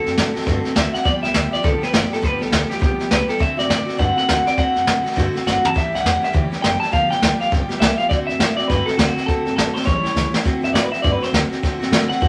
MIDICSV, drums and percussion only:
0, 0, Header, 1, 2, 480
1, 0, Start_track
1, 0, Tempo, 293830
1, 1715, Time_signature, 4, 2, 24, 8
1, 20064, End_track
2, 0, Start_track
2, 0, Title_t, "Drums"
2, 104, Note_on_c, 9, 38, 34
2, 267, Note_off_c, 9, 38, 0
2, 286, Note_on_c, 9, 38, 115
2, 286, Note_on_c, 9, 44, 90
2, 450, Note_off_c, 9, 38, 0
2, 450, Note_off_c, 9, 44, 0
2, 584, Note_on_c, 9, 38, 33
2, 667, Note_off_c, 9, 38, 0
2, 667, Note_on_c, 9, 38, 35
2, 762, Note_off_c, 9, 38, 0
2, 762, Note_on_c, 9, 38, 35
2, 766, Note_on_c, 9, 36, 111
2, 926, Note_off_c, 9, 38, 0
2, 929, Note_off_c, 9, 36, 0
2, 1057, Note_on_c, 9, 38, 32
2, 1220, Note_off_c, 9, 38, 0
2, 1237, Note_on_c, 9, 38, 110
2, 1237, Note_on_c, 9, 44, 79
2, 1400, Note_off_c, 9, 38, 0
2, 1400, Note_off_c, 9, 44, 0
2, 1539, Note_on_c, 9, 38, 37
2, 1703, Note_off_c, 9, 38, 0
2, 1713, Note_on_c, 9, 38, 35
2, 1722, Note_on_c, 9, 36, 111
2, 1876, Note_off_c, 9, 38, 0
2, 1886, Note_off_c, 9, 36, 0
2, 2017, Note_on_c, 9, 38, 34
2, 2181, Note_off_c, 9, 38, 0
2, 2191, Note_on_c, 9, 38, 114
2, 2191, Note_on_c, 9, 44, 88
2, 2354, Note_off_c, 9, 38, 0
2, 2354, Note_off_c, 9, 44, 0
2, 2500, Note_on_c, 9, 38, 34
2, 2664, Note_off_c, 9, 38, 0
2, 2680, Note_on_c, 9, 38, 37
2, 2683, Note_on_c, 9, 36, 113
2, 2843, Note_off_c, 9, 38, 0
2, 2847, Note_off_c, 9, 36, 0
2, 2984, Note_on_c, 9, 38, 35
2, 3147, Note_off_c, 9, 38, 0
2, 3162, Note_on_c, 9, 38, 107
2, 3162, Note_on_c, 9, 44, 85
2, 3326, Note_off_c, 9, 38, 0
2, 3326, Note_off_c, 9, 44, 0
2, 3475, Note_on_c, 9, 38, 35
2, 3638, Note_off_c, 9, 38, 0
2, 3650, Note_on_c, 9, 36, 112
2, 3650, Note_on_c, 9, 38, 36
2, 3813, Note_off_c, 9, 36, 0
2, 3813, Note_off_c, 9, 38, 0
2, 3943, Note_on_c, 9, 38, 33
2, 4106, Note_off_c, 9, 38, 0
2, 4122, Note_on_c, 9, 38, 107
2, 4122, Note_on_c, 9, 44, 90
2, 4285, Note_off_c, 9, 38, 0
2, 4285, Note_off_c, 9, 44, 0
2, 4419, Note_on_c, 9, 38, 35
2, 4583, Note_off_c, 9, 38, 0
2, 4600, Note_on_c, 9, 38, 37
2, 4605, Note_on_c, 9, 36, 121
2, 4763, Note_off_c, 9, 38, 0
2, 4769, Note_off_c, 9, 36, 0
2, 4897, Note_on_c, 9, 38, 35
2, 5060, Note_off_c, 9, 38, 0
2, 5077, Note_on_c, 9, 38, 108
2, 5077, Note_on_c, 9, 44, 89
2, 5240, Note_off_c, 9, 38, 0
2, 5240, Note_off_c, 9, 44, 0
2, 5372, Note_on_c, 9, 38, 37
2, 5535, Note_off_c, 9, 38, 0
2, 5560, Note_on_c, 9, 38, 37
2, 5561, Note_on_c, 9, 36, 111
2, 5724, Note_off_c, 9, 38, 0
2, 5725, Note_off_c, 9, 36, 0
2, 5856, Note_on_c, 9, 38, 34
2, 6020, Note_off_c, 9, 38, 0
2, 6045, Note_on_c, 9, 38, 112
2, 6045, Note_on_c, 9, 44, 92
2, 6208, Note_off_c, 9, 38, 0
2, 6208, Note_off_c, 9, 44, 0
2, 6346, Note_on_c, 9, 38, 34
2, 6510, Note_off_c, 9, 38, 0
2, 6523, Note_on_c, 9, 36, 112
2, 6523, Note_on_c, 9, 38, 36
2, 6686, Note_off_c, 9, 38, 0
2, 6687, Note_off_c, 9, 36, 0
2, 6820, Note_on_c, 9, 38, 33
2, 6983, Note_off_c, 9, 38, 0
2, 7002, Note_on_c, 9, 38, 113
2, 7002, Note_on_c, 9, 44, 84
2, 7165, Note_off_c, 9, 38, 0
2, 7165, Note_off_c, 9, 44, 0
2, 7289, Note_on_c, 9, 38, 36
2, 7452, Note_off_c, 9, 38, 0
2, 7469, Note_on_c, 9, 38, 37
2, 7478, Note_on_c, 9, 36, 116
2, 7632, Note_off_c, 9, 38, 0
2, 7642, Note_off_c, 9, 36, 0
2, 7769, Note_on_c, 9, 38, 34
2, 7933, Note_off_c, 9, 38, 0
2, 7960, Note_on_c, 9, 38, 110
2, 7960, Note_on_c, 9, 44, 90
2, 8123, Note_off_c, 9, 38, 0
2, 8123, Note_off_c, 9, 44, 0
2, 8262, Note_on_c, 9, 38, 34
2, 8352, Note_off_c, 9, 38, 0
2, 8352, Note_on_c, 9, 38, 35
2, 8447, Note_on_c, 9, 36, 112
2, 8455, Note_off_c, 9, 38, 0
2, 8455, Note_on_c, 9, 38, 37
2, 8611, Note_off_c, 9, 36, 0
2, 8619, Note_off_c, 9, 38, 0
2, 8750, Note_on_c, 9, 38, 33
2, 8913, Note_off_c, 9, 38, 0
2, 8938, Note_on_c, 9, 38, 59
2, 8938, Note_on_c, 9, 44, 82
2, 9101, Note_off_c, 9, 38, 0
2, 9101, Note_off_c, 9, 44, 0
2, 9227, Note_on_c, 9, 43, 86
2, 9391, Note_off_c, 9, 43, 0
2, 9408, Note_on_c, 9, 36, 111
2, 9420, Note_on_c, 9, 38, 36
2, 9571, Note_off_c, 9, 36, 0
2, 9583, Note_off_c, 9, 38, 0
2, 9721, Note_on_c, 9, 38, 34
2, 9885, Note_off_c, 9, 38, 0
2, 9895, Note_on_c, 9, 38, 111
2, 9895, Note_on_c, 9, 44, 89
2, 10059, Note_off_c, 9, 38, 0
2, 10059, Note_off_c, 9, 44, 0
2, 10187, Note_on_c, 9, 38, 34
2, 10350, Note_off_c, 9, 38, 0
2, 10366, Note_on_c, 9, 36, 119
2, 10371, Note_on_c, 9, 38, 38
2, 10530, Note_off_c, 9, 36, 0
2, 10535, Note_off_c, 9, 38, 0
2, 10661, Note_on_c, 9, 38, 34
2, 10824, Note_off_c, 9, 38, 0
2, 10846, Note_on_c, 9, 38, 111
2, 10846, Note_on_c, 9, 44, 80
2, 11009, Note_off_c, 9, 38, 0
2, 11009, Note_off_c, 9, 44, 0
2, 11147, Note_on_c, 9, 38, 36
2, 11310, Note_off_c, 9, 38, 0
2, 11326, Note_on_c, 9, 36, 108
2, 11327, Note_on_c, 9, 38, 34
2, 11489, Note_off_c, 9, 36, 0
2, 11490, Note_off_c, 9, 38, 0
2, 11621, Note_on_c, 9, 38, 35
2, 11784, Note_off_c, 9, 38, 0
2, 11801, Note_on_c, 9, 38, 117
2, 11801, Note_on_c, 9, 44, 91
2, 11964, Note_off_c, 9, 38, 0
2, 11964, Note_off_c, 9, 44, 0
2, 12104, Note_on_c, 9, 38, 35
2, 12268, Note_off_c, 9, 38, 0
2, 12286, Note_on_c, 9, 36, 121
2, 12292, Note_on_c, 9, 38, 39
2, 12449, Note_off_c, 9, 36, 0
2, 12455, Note_off_c, 9, 38, 0
2, 12579, Note_on_c, 9, 38, 34
2, 12743, Note_off_c, 9, 38, 0
2, 12768, Note_on_c, 9, 38, 107
2, 12768, Note_on_c, 9, 44, 87
2, 12931, Note_off_c, 9, 38, 0
2, 12931, Note_off_c, 9, 44, 0
2, 13054, Note_on_c, 9, 38, 35
2, 13217, Note_off_c, 9, 38, 0
2, 13244, Note_on_c, 9, 38, 35
2, 13247, Note_on_c, 9, 36, 121
2, 13407, Note_off_c, 9, 38, 0
2, 13411, Note_off_c, 9, 36, 0
2, 13542, Note_on_c, 9, 38, 35
2, 13705, Note_off_c, 9, 38, 0
2, 13723, Note_on_c, 9, 38, 112
2, 13723, Note_on_c, 9, 44, 88
2, 13886, Note_off_c, 9, 38, 0
2, 13886, Note_off_c, 9, 44, 0
2, 14022, Note_on_c, 9, 38, 35
2, 14186, Note_off_c, 9, 38, 0
2, 14206, Note_on_c, 9, 38, 38
2, 14209, Note_on_c, 9, 36, 116
2, 14370, Note_off_c, 9, 38, 0
2, 14372, Note_off_c, 9, 36, 0
2, 14503, Note_on_c, 9, 38, 33
2, 14666, Note_off_c, 9, 38, 0
2, 14681, Note_on_c, 9, 38, 107
2, 14681, Note_on_c, 9, 44, 82
2, 14845, Note_off_c, 9, 38, 0
2, 14845, Note_off_c, 9, 44, 0
2, 14983, Note_on_c, 9, 38, 35
2, 15146, Note_off_c, 9, 38, 0
2, 15161, Note_on_c, 9, 38, 35
2, 15168, Note_on_c, 9, 36, 115
2, 15325, Note_off_c, 9, 38, 0
2, 15331, Note_off_c, 9, 36, 0
2, 15456, Note_on_c, 9, 38, 35
2, 15619, Note_off_c, 9, 38, 0
2, 15653, Note_on_c, 9, 38, 113
2, 15653, Note_on_c, 9, 44, 88
2, 15816, Note_off_c, 9, 38, 0
2, 15816, Note_off_c, 9, 44, 0
2, 15940, Note_on_c, 9, 38, 35
2, 16033, Note_off_c, 9, 38, 0
2, 16033, Note_on_c, 9, 38, 33
2, 16120, Note_off_c, 9, 38, 0
2, 16120, Note_on_c, 9, 38, 37
2, 16126, Note_on_c, 9, 36, 123
2, 16284, Note_off_c, 9, 38, 0
2, 16289, Note_off_c, 9, 36, 0
2, 16418, Note_on_c, 9, 38, 34
2, 16581, Note_off_c, 9, 38, 0
2, 16600, Note_on_c, 9, 38, 61
2, 16600, Note_on_c, 9, 44, 81
2, 16764, Note_off_c, 9, 38, 0
2, 16764, Note_off_c, 9, 44, 0
2, 16889, Note_on_c, 9, 38, 91
2, 17053, Note_off_c, 9, 38, 0
2, 17074, Note_on_c, 9, 38, 36
2, 17079, Note_on_c, 9, 36, 114
2, 17237, Note_off_c, 9, 38, 0
2, 17242, Note_off_c, 9, 36, 0
2, 17374, Note_on_c, 9, 38, 36
2, 17537, Note_off_c, 9, 38, 0
2, 17564, Note_on_c, 9, 38, 119
2, 17564, Note_on_c, 9, 44, 87
2, 17728, Note_off_c, 9, 38, 0
2, 17728, Note_off_c, 9, 44, 0
2, 17859, Note_on_c, 9, 38, 33
2, 18023, Note_off_c, 9, 38, 0
2, 18037, Note_on_c, 9, 38, 40
2, 18041, Note_on_c, 9, 36, 120
2, 18201, Note_off_c, 9, 38, 0
2, 18204, Note_off_c, 9, 36, 0
2, 18342, Note_on_c, 9, 38, 36
2, 18506, Note_off_c, 9, 38, 0
2, 18525, Note_on_c, 9, 38, 112
2, 18525, Note_on_c, 9, 44, 84
2, 18689, Note_off_c, 9, 38, 0
2, 18689, Note_off_c, 9, 44, 0
2, 18821, Note_on_c, 9, 38, 38
2, 18984, Note_off_c, 9, 38, 0
2, 19005, Note_on_c, 9, 36, 112
2, 19011, Note_on_c, 9, 38, 35
2, 19169, Note_off_c, 9, 36, 0
2, 19174, Note_off_c, 9, 38, 0
2, 19310, Note_on_c, 9, 38, 35
2, 19473, Note_off_c, 9, 38, 0
2, 19481, Note_on_c, 9, 38, 114
2, 19481, Note_on_c, 9, 44, 96
2, 19644, Note_off_c, 9, 38, 0
2, 19644, Note_off_c, 9, 44, 0
2, 19788, Note_on_c, 9, 38, 36
2, 19951, Note_off_c, 9, 38, 0
2, 19962, Note_on_c, 9, 36, 121
2, 19962, Note_on_c, 9, 38, 39
2, 20064, Note_off_c, 9, 36, 0
2, 20064, Note_off_c, 9, 38, 0
2, 20064, End_track
0, 0, End_of_file